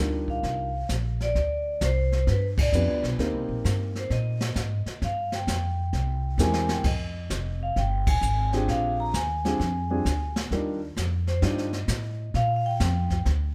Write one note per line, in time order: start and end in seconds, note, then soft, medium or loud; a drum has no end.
0.00 0.42 D2 medium
0.00 0.69 G3 medium
0.00 0.69 D4 medium
0.00 0.69 D#4 medium
0.00 0.69 F4 medium
0.00 0.69 A#4 medium
0.00 0.31 D#5 medium
0.28 0.86 F5 medium
0.28 kick soft
0.43 0.88 C2 medium
0.43 brush sweep soft
0.43 kick soft
0.43 snare soft
0.89 1.34 A#1 medium
0.89 kick soft
0.89 snare medium
0.89 hi-hat pedal medium
1.20 1.84 D5 medium
1.20 snare soft
1.35 1.80 D2 medium
1.35 brush sweep soft
1.35 kick soft
1.35 snare soft
1.81 2.25 C2 medium
1.81 2.30 C5 medium
1.81 kick soft
1.81 snare medium
1.81 hi-hat pedal medium
2.12 snare soft
2.27 2.71 G2 medium
2.27 2.43 B4 medium
2.27 brush sweep soft
2.27 kick soft
2.27 snare soft
2.58 3.02 D5 medium
2.58 kick medium
2.58 crash medium
2.72 2.88 F2 medium
2.72 3.19 B3 medium
2.72 3.19 D4 medium
2.72 3.19 F4 medium
2.72 3.18 G4 medium
2.72 3.19 B4 medium
2.72 hi-hat pedal medium
2.88 3.03 D2 medium
3.03 3.17 B1 medium
3.03 snare soft
3.18 3.33 D#2 medium
3.18 4.47 A#3 medium
3.18 4.47 C4 medium
3.18 4.47 D#4 medium
3.18 4.47 G4 medium
3.18 4.47 A#4 medium
3.18 brush sweep soft
3.18 kick soft
3.18 snare soft
3.33 3.48 C2 medium
3.48 3.63 A#1 medium
3.65 4.09 G2 medium
3.65 kick soft
3.65 snare medium
3.65 hi-hat pedal soft
3.95 4.04 C5 medium
3.95 snare soft
4.10 4.55 A#2 medium
4.10 4.99 D#5 medium
4.10 brush sweep soft
4.10 kick soft
4.10 snare soft
4.41 snare medium
4.56 4.84 G#2 medium
4.56 kick soft
4.56 snare medium
4.56 hi-hat pedal soft
4.86 muted upright bass stroke soft
4.86 snare soft
5.02 5.46 G2 medium
5.02 5.31 F5 medium
5.02 brush sweep soft
5.02 kick soft
5.02 snare soft
5.32 6.36 G5 medium
5.32 snare soft
5.47 5.92 F2 medium
5.47 kick soft
5.47 snare medium
5.47 hi-hat pedal medium
5.93 6.37 C2 medium
5.93 brush sweep medium
5.93 kick soft
5.93 snare soft
6.38 6.83 E2 medium
6.38 6.85 G#3 medium
6.38 6.85 C4 medium
6.38 6.85 E4 medium
6.38 6.85 G4 medium
6.38 6.86 A#4 medium
6.38 6.71 G#5 medium
6.38 snare soft
6.38 hi-hat pedal soft
6.53 snare medium
6.69 6.85 G5 medium
6.69 snare medium
6.84 7.29 F2 medium
6.84 7.64 D#5 medium
6.84 brush sweep soft
6.84 kick medium
6.84 snare soft
6.84 crash medium
7.30 7.75 F1 medium
7.30 kick soft
7.30 snare medium
7.30 hi-hat pedal medium
7.63 7.76 F5 medium
7.76 8.21 G1 medium
7.76 8.06 G5 medium
7.76 brush sweep soft
7.76 kick soft
7.76 snare soft
8.07 8.50 G#5 medium
8.07 kick medium
8.07 crash medium
8.21 8.66 G#1 medium
8.21 hi-hat pedal medium
8.53 9.11 C4 medium
8.53 9.11 D4 medium
8.53 9.11 F4 medium
8.53 9.11 G4 medium
8.53 9.11 G#4 medium
8.53 8.69 G5 medium
8.53 snare soft
8.68 9.12 A#1 medium
8.68 8.97 F5 medium
8.68 brush sweep soft
8.68 kick soft
8.68 snare soft
9.00 9.07 A#5 medium
9.14 9.58 D#2 medium
9.14 10.32 G#5 medium
9.14 kick soft
9.14 snare medium
9.14 hi-hat pedal medium
9.45 9.58 G3 medium
9.45 9.58 C4 medium
9.45 9.58 D4 medium
9.45 9.59 F4 medium
9.45 9.59 G#4 medium
9.45 snare soft
9.59 10.04 F2 medium
9.59 brush sweep medium
9.59 kick soft
9.59 snare soft
9.90 10.04 G3 medium
9.90 10.04 C4 medium
9.90 10.04 D4 medium
9.90 10.04 F4 medium
9.90 10.04 G#4 medium
10.05 10.50 D2 medium
10.05 kick soft
10.05 snare medium
10.05 hi-hat pedal medium
10.36 snare medium
10.51 10.95 D#2 medium
10.51 10.79 G3 medium
10.51 10.79 D4 medium
10.51 10.80 D#4 medium
10.51 10.79 F4 medium
10.51 10.79 A#4 medium
10.51 brush sweep medium
10.51 kick soft
10.51 snare soft
10.96 11.41 F2 medium
10.96 kick soft
10.96 snare medium
10.96 hi-hat pedal medium
11.27 11.42 C5 medium
11.27 snare soft
11.42 11.87 G2 medium
11.42 11.70 G3 medium
11.42 11.70 D4 medium
11.42 11.70 D#4 medium
11.42 11.70 F4 medium
11.42 11.70 C5 medium
11.42 12.37 D#5 medium
11.42 brush sweep medium
11.42 kick soft
11.42 snare soft
11.58 snare soft
11.73 snare soft
11.88 12.33 A2 medium
11.88 kick soft
11.88 snare medium
11.88 hi-hat pedal medium
12.34 12.79 A#2 medium
12.34 12.45 F5 loud
12.34 brush sweep medium
12.34 kick soft
12.34 snare soft
12.56 12.65 F5 medium
12.66 13.23 G5 medium
12.80 13.25 F2 medium
12.80 kick soft
12.80 snare medium
12.80 hi-hat pedal medium
13.10 kick soft
13.10 snare soft
13.25 13.54 D2 medium
13.25 brush sweep medium
13.25 kick soft
13.25 snare soft